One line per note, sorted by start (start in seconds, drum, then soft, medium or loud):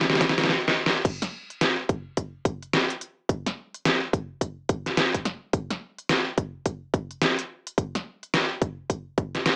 0.01 snare medium
0.10 snare medium
0.15 snare medium
0.21 kick loud
0.21 snare loud
0.21 closed hi-hat medium
0.29 snare medium
0.38 snare medium
0.38 closed hi-hat soft
0.44 snare medium
0.49 snare medium
0.68 snare medium
0.86 snare loud
1.05 kick loud
1.05 closed hi-hat medium
1.05 crash loud
1.22 snare soft
1.22 closed hi-hat medium
1.50 closed hi-hat soft
1.61 snare loud
1.61 closed hi-hat medium
1.89 kick loud
1.89 closed hi-hat medium
2.17 kick medium
2.17 closed hi-hat medium
2.45 kick loud
2.45 closed hi-hat medium
2.62 closed hi-hat soft
2.73 snare loud
2.73 closed hi-hat medium
2.90 closed hi-hat medium
3.01 closed hi-hat medium
3.29 kick loud
3.29 closed hi-hat medium
3.46 snare soft
3.46 closed hi-hat medium
3.74 closed hi-hat soft
3.85 snare loud
3.85 closed hi-hat medium
4.13 kick loud
4.13 closed hi-hat medium
4.41 kick medium
4.41 closed hi-hat medium
4.69 kick loud
4.69 closed hi-hat medium
4.86 snare soft
4.86 closed hi-hat soft
4.97 snare loud
4.97 closed hi-hat medium
5.15 kick medium
5.15 closed hi-hat medium
5.25 snare soft
5.25 closed hi-hat medium
5.53 kick loud
5.53 closed hi-hat medium
5.71 snare soft
5.71 closed hi-hat medium
5.98 closed hi-hat soft
6.09 snare loud
6.09 closed hi-hat medium
6.38 kick loud
6.38 closed hi-hat medium
6.66 kick medium
6.66 closed hi-hat medium
6.94 kick loud
6.94 closed hi-hat medium
7.11 closed hi-hat soft
7.21 snare loud
7.21 closed hi-hat medium
7.39 closed hi-hat medium
7.67 closed hi-hat medium
7.78 kick loud
7.78 closed hi-hat medium
7.95 snare soft
7.95 closed hi-hat medium
8.23 closed hi-hat soft
8.34 snare loud
8.34 closed hi-hat medium
8.62 kick loud
8.62 closed hi-hat medium
8.90 kick medium
8.90 closed hi-hat medium
9.18 kick loud
9.18 closed hi-hat medium
9.35 snare soft
9.35 closed hi-hat soft
9.46 snare loud
9.46 closed hi-hat medium